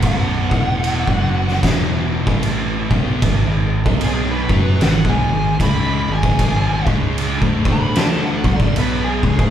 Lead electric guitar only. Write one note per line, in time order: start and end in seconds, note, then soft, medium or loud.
0.07 1.60 F#5 medium
4.04 4.29 G#4 loud
4.31 4.81 B4 medium
4.84 5.08 F#5 loud
5.09 5.59 G#5 medium
5.62 6.12 B5 medium
6.14 6.90 G#5 medium
7.73 7.97 B5 loud
7.98 8.23 A5 medium
8.25 8.50 F#5 medium
8.53 8.77 D5 medium
8.78 9.03 B4 medium
9.04 9.29 G#4 loud
9.31 9.50 G#4 loud